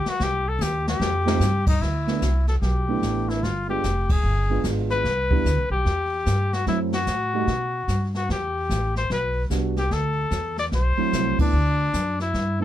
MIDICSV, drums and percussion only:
0, 0, Header, 1, 2, 480
1, 0, Start_track
1, 0, Key_signature, 1, "major"
1, 0, Tempo, 404585
1, 242, Time_signature, 4, 2, 24, 8
1, 15002, End_track
2, 0, Start_track
2, 0, Title_t, "Drums"
2, 69, Note_on_c, 9, 38, 42
2, 188, Note_off_c, 9, 38, 0
2, 239, Note_on_c, 9, 36, 27
2, 240, Note_on_c, 9, 25, 50
2, 240, Note_on_c, 9, 38, 46
2, 358, Note_off_c, 9, 36, 0
2, 358, Note_off_c, 9, 38, 0
2, 719, Note_on_c, 9, 44, 57
2, 724, Note_on_c, 9, 38, 50
2, 838, Note_off_c, 9, 44, 0
2, 842, Note_off_c, 9, 38, 0
2, 1040, Note_on_c, 9, 38, 68
2, 1158, Note_off_c, 9, 38, 0
2, 1201, Note_on_c, 9, 38, 69
2, 1320, Note_off_c, 9, 38, 0
2, 1515, Note_on_c, 9, 38, 100
2, 1633, Note_off_c, 9, 38, 0
2, 1666, Note_on_c, 9, 44, 57
2, 1671, Note_on_c, 9, 38, 52
2, 1784, Note_off_c, 9, 44, 0
2, 1789, Note_off_c, 9, 38, 0
2, 1978, Note_on_c, 9, 49, 82
2, 1979, Note_on_c, 9, 36, 80
2, 2097, Note_off_c, 9, 49, 0
2, 2098, Note_off_c, 9, 36, 0
2, 2152, Note_on_c, 9, 36, 17
2, 2160, Note_off_c, 9, 25, 0
2, 2160, Note_on_c, 9, 25, 46
2, 2160, Note_on_c, 9, 38, 34
2, 2271, Note_off_c, 9, 36, 0
2, 2278, Note_off_c, 9, 38, 0
2, 2463, Note_on_c, 9, 38, 37
2, 2582, Note_off_c, 9, 38, 0
2, 2628, Note_on_c, 9, 44, 49
2, 2631, Note_on_c, 9, 36, 18
2, 2633, Note_on_c, 9, 38, 45
2, 2747, Note_off_c, 9, 44, 0
2, 2750, Note_off_c, 9, 36, 0
2, 2752, Note_off_c, 9, 38, 0
2, 2934, Note_on_c, 9, 38, 29
2, 3053, Note_off_c, 9, 38, 0
2, 3111, Note_on_c, 9, 36, 18
2, 3113, Note_off_c, 9, 25, 0
2, 3113, Note_on_c, 9, 25, 41
2, 3113, Note_on_c, 9, 38, 34
2, 3230, Note_off_c, 9, 36, 0
2, 3232, Note_off_c, 9, 38, 0
2, 3588, Note_on_c, 9, 44, 40
2, 3591, Note_on_c, 9, 36, 17
2, 3593, Note_on_c, 9, 38, 42
2, 3707, Note_off_c, 9, 44, 0
2, 3709, Note_off_c, 9, 36, 0
2, 3712, Note_off_c, 9, 38, 0
2, 3911, Note_on_c, 9, 38, 31
2, 4030, Note_off_c, 9, 38, 0
2, 4073, Note_on_c, 9, 36, 20
2, 4080, Note_off_c, 9, 25, 0
2, 4080, Note_on_c, 9, 25, 40
2, 4080, Note_on_c, 9, 38, 36
2, 4191, Note_off_c, 9, 36, 0
2, 4199, Note_off_c, 9, 38, 0
2, 4550, Note_on_c, 9, 36, 19
2, 4550, Note_on_c, 9, 44, 46
2, 4554, Note_on_c, 9, 38, 44
2, 4668, Note_off_c, 9, 44, 0
2, 4669, Note_off_c, 9, 36, 0
2, 4673, Note_off_c, 9, 38, 0
2, 4859, Note_on_c, 9, 36, 62
2, 4859, Note_on_c, 9, 51, 56
2, 4977, Note_off_c, 9, 51, 0
2, 4978, Note_off_c, 9, 36, 0
2, 5035, Note_off_c, 9, 25, 0
2, 5035, Note_on_c, 9, 25, 41
2, 5502, Note_on_c, 9, 44, 52
2, 5506, Note_on_c, 9, 38, 44
2, 5507, Note_on_c, 9, 36, 19
2, 5620, Note_off_c, 9, 44, 0
2, 5625, Note_off_c, 9, 36, 0
2, 5625, Note_off_c, 9, 38, 0
2, 5813, Note_on_c, 9, 38, 30
2, 5932, Note_off_c, 9, 38, 0
2, 5987, Note_on_c, 9, 36, 23
2, 5990, Note_off_c, 9, 25, 0
2, 5990, Note_on_c, 9, 25, 44
2, 5990, Note_on_c, 9, 38, 37
2, 6106, Note_off_c, 9, 36, 0
2, 6109, Note_off_c, 9, 38, 0
2, 6297, Note_on_c, 9, 36, 50
2, 6415, Note_off_c, 9, 36, 0
2, 6470, Note_on_c, 9, 36, 16
2, 6472, Note_on_c, 9, 44, 42
2, 6476, Note_on_c, 9, 38, 44
2, 6588, Note_off_c, 9, 36, 0
2, 6590, Note_off_c, 9, 44, 0
2, 6595, Note_off_c, 9, 38, 0
2, 6948, Note_on_c, 9, 36, 21
2, 6949, Note_off_c, 9, 25, 0
2, 6949, Note_on_c, 9, 25, 42
2, 6949, Note_on_c, 9, 38, 35
2, 7067, Note_off_c, 9, 36, 0
2, 7068, Note_off_c, 9, 38, 0
2, 7426, Note_on_c, 9, 44, 47
2, 7429, Note_on_c, 9, 36, 16
2, 7431, Note_on_c, 9, 38, 46
2, 7545, Note_off_c, 9, 44, 0
2, 7548, Note_off_c, 9, 36, 0
2, 7550, Note_off_c, 9, 38, 0
2, 7746, Note_on_c, 9, 38, 29
2, 7865, Note_off_c, 9, 38, 0
2, 7908, Note_off_c, 9, 25, 0
2, 7908, Note_on_c, 9, 25, 40
2, 7908, Note_on_c, 9, 36, 21
2, 7908, Note_on_c, 9, 38, 35
2, 8027, Note_off_c, 9, 36, 0
2, 8027, Note_off_c, 9, 38, 0
2, 8217, Note_on_c, 9, 38, 46
2, 8336, Note_off_c, 9, 38, 0
2, 8382, Note_on_c, 9, 44, 45
2, 8387, Note_on_c, 9, 38, 49
2, 8389, Note_on_c, 9, 36, 20
2, 8501, Note_off_c, 9, 44, 0
2, 8505, Note_off_c, 9, 38, 0
2, 8508, Note_off_c, 9, 36, 0
2, 8867, Note_off_c, 9, 25, 0
2, 8867, Note_on_c, 9, 25, 39
2, 8867, Note_on_c, 9, 38, 32
2, 8871, Note_on_c, 9, 36, 17
2, 8985, Note_off_c, 9, 38, 0
2, 8990, Note_off_c, 9, 36, 0
2, 9350, Note_on_c, 9, 44, 45
2, 9355, Note_on_c, 9, 36, 20
2, 9355, Note_on_c, 9, 38, 46
2, 9469, Note_off_c, 9, 44, 0
2, 9474, Note_off_c, 9, 36, 0
2, 9474, Note_off_c, 9, 38, 0
2, 9664, Note_on_c, 9, 38, 30
2, 9783, Note_off_c, 9, 38, 0
2, 9840, Note_on_c, 9, 36, 18
2, 9844, Note_off_c, 9, 25, 0
2, 9844, Note_on_c, 9, 25, 36
2, 9844, Note_on_c, 9, 38, 38
2, 9959, Note_off_c, 9, 36, 0
2, 9962, Note_off_c, 9, 38, 0
2, 10321, Note_on_c, 9, 36, 21
2, 10324, Note_on_c, 9, 44, 46
2, 10328, Note_on_c, 9, 38, 45
2, 10440, Note_off_c, 9, 36, 0
2, 10442, Note_off_c, 9, 44, 0
2, 10447, Note_off_c, 9, 38, 0
2, 10629, Note_on_c, 9, 38, 29
2, 10747, Note_off_c, 9, 38, 0
2, 10801, Note_off_c, 9, 25, 0
2, 10801, Note_on_c, 9, 25, 35
2, 10801, Note_on_c, 9, 36, 16
2, 10801, Note_on_c, 9, 38, 37
2, 10920, Note_off_c, 9, 36, 0
2, 10920, Note_off_c, 9, 38, 0
2, 11274, Note_on_c, 9, 44, 47
2, 11279, Note_on_c, 9, 36, 16
2, 11279, Note_on_c, 9, 38, 44
2, 11393, Note_off_c, 9, 44, 0
2, 11397, Note_off_c, 9, 36, 0
2, 11397, Note_off_c, 9, 38, 0
2, 11584, Note_on_c, 9, 38, 30
2, 11703, Note_off_c, 9, 38, 0
2, 11756, Note_on_c, 9, 36, 18
2, 11758, Note_off_c, 9, 25, 0
2, 11758, Note_on_c, 9, 25, 39
2, 11758, Note_on_c, 9, 38, 37
2, 11875, Note_off_c, 9, 36, 0
2, 11877, Note_off_c, 9, 38, 0
2, 12232, Note_on_c, 9, 44, 51
2, 12237, Note_on_c, 9, 36, 22
2, 12237, Note_on_c, 9, 38, 45
2, 12351, Note_off_c, 9, 44, 0
2, 12355, Note_off_c, 9, 36, 0
2, 12356, Note_off_c, 9, 38, 0
2, 12545, Note_on_c, 9, 38, 29
2, 12663, Note_off_c, 9, 38, 0
2, 12716, Note_off_c, 9, 25, 0
2, 12716, Note_on_c, 9, 25, 42
2, 12716, Note_on_c, 9, 38, 34
2, 12719, Note_on_c, 9, 36, 15
2, 12834, Note_off_c, 9, 38, 0
2, 12838, Note_off_c, 9, 36, 0
2, 13203, Note_on_c, 9, 36, 18
2, 13204, Note_on_c, 9, 44, 56
2, 13209, Note_on_c, 9, 38, 46
2, 13322, Note_off_c, 9, 36, 0
2, 13323, Note_off_c, 9, 44, 0
2, 13327, Note_off_c, 9, 38, 0
2, 13511, Note_on_c, 9, 51, 60
2, 13512, Note_on_c, 9, 36, 67
2, 13630, Note_off_c, 9, 51, 0
2, 13631, Note_off_c, 9, 36, 0
2, 13689, Note_off_c, 9, 25, 0
2, 13689, Note_on_c, 9, 25, 43
2, 14160, Note_on_c, 9, 44, 52
2, 14164, Note_on_c, 9, 36, 15
2, 14165, Note_on_c, 9, 38, 51
2, 14279, Note_off_c, 9, 44, 0
2, 14283, Note_off_c, 9, 36, 0
2, 14284, Note_off_c, 9, 38, 0
2, 14470, Note_on_c, 9, 38, 29
2, 14588, Note_off_c, 9, 38, 0
2, 14642, Note_off_c, 9, 25, 0
2, 14642, Note_on_c, 9, 25, 40
2, 14642, Note_on_c, 9, 38, 36
2, 14643, Note_on_c, 9, 36, 19
2, 14761, Note_off_c, 9, 38, 0
2, 14762, Note_off_c, 9, 36, 0
2, 15002, Note_off_c, 9, 25, 0
2, 15002, End_track
0, 0, End_of_file